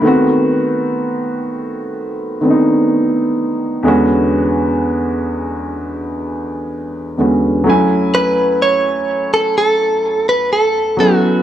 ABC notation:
X:1
M:4/4
L:1/16
Q:1/4=63
K:F#m
V:1 name="Clean electric guitar"
z16 | z16 | z2 B2 c3 A A3 B A2 F2 |]
V:2 name="Grand piano"
[^D,A,B,=CF]8- [D,A,B,CF]2 [D,A,B,C=D^D]6 | [E,,D,G,B,CF]12- [E,,D,G,B,CF]2 [E,,D,G,B,CF]2 | [F,A,CEg]12- [F,A,CEg]2 [F,B,CEA]2 |]